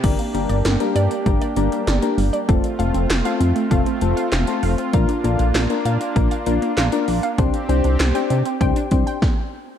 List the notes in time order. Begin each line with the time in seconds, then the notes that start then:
0.04 G1 A#3 D4 G4 A#4 D5, kick, closed hi-hat, crash
0.19 A#3, closed hi-hat
0.34 G1 G3 A#3 D4 G4 A#4, closed hi-hat
0.49 G1 D5, closed hi-hat
0.65 G1 A#3, snare, closed hi-hat
0.80 G3 A#3 D4 G4 A#4, closed hi-hat
0.95 G2 D5, closed hi-hat
1.11 A#3, closed hi-hat
1.26 G1 G3 A#3 D4 G4 A#4, kick, closed hi-hat
1.41 D5, closed hi-hat
1.56 G1 A#3 D4 G4 A#4, closed hi-hat
1.72 G3, closed hi-hat
1.87 G1 D5, snare, closed hi-hat
2.02 A#3 D4 G4 A#4, closed hi-hat
2.18 G1 G3, open hi-hat
2.33 D5, closed hi-hat
2.48 F1 A3 C4 F4 A4, kick, closed hi-hat
2.64 closed hi-hat
2.79 F1 A3 C4 F4 A4 F5, closed hi-hat
2.94 F1 C4, closed hi-hat
3.10 F1 A3, snare, clap, closed hi-hat
3.25 A3 C4 F4 A4 F5, closed hi-hat
3.40 F2 C4, closed hi-hat
3.56 A3, closed hi-hat
3.71 F1 A3 C4 F4 A4 F5, kick, closed hi-hat
3.86 C4, closed hi-hat
4.01 F1 A3 C4 F4 A4, closed hi-hat
4.17 F5, closed hi-hat
4.32 F1 C4, snare, clap, closed hi-hat
4.47 A3 C4 F4 A4, closed hi-hat
4.63 F1 F5, open hi-hat
4.78 C4, closed hi-hat
4.93 A#1 A#3 D4 F4 A#4 F5, kick, closed hi-hat
5.09 D4, closed hi-hat
5.24 A#1 A#3 D4 F4 A4, closed hi-hat
5.39 A#1 F5, closed hi-hat
5.55 A#1 D4, snare, clap, closed hi-hat
5.70 A#3 D4 F4 A#4, closed hi-hat
5.85 A#2 F5, closed hi-hat
6.01 D4, closed hi-hat
6.16 A#1 A#3 D4 F4 A#4, kick, closed hi-hat
6.31 F5, closed hi-hat
6.46 A#1 A#3 D4 F4 A#4, closed hi-hat
6.62 A#3, closed hi-hat
6.77 A#1 F5, snare, clap, closed hi-hat
6.92 A#3 D4 F4 A#4, closed hi-hat
7.08 A#1 A#3, open hi-hat
7.23 F5, closed hi-hat
7.38 C2 C4 D4 G4 C5, kick, closed hi-hat
7.54 closed hi-hat
7.69 C2 C4 D4 G4 C5 G5, closed hi-hat
7.84 C2 D4, closed hi-hat
8.00 C2 C4, snare, clap, closed hi-hat
8.15 C4 D4 G4 C5 G5, closed hi-hat
8.30 C3 D4, closed hi-hat
8.45 C4, closed hi-hat
8.61 C2 C4 D4 G4 C5 G5, kick, closed hi-hat
8.76 D4, closed hi-hat
8.91 C2 C4 D4 G4 C5, kick, closed hi-hat
9.07 G5, closed hi-hat
9.22 kick, snare